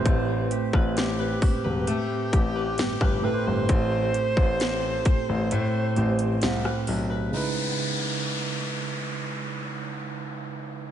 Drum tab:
HH |x-x-x-o-x-x-x---|x-x-x-x-x-xxx-o-|----------------|
SD |---ro-------or--|----o-------or--|----------------|
BD |o--o--o---o--o--|o--o--o---------|----------------|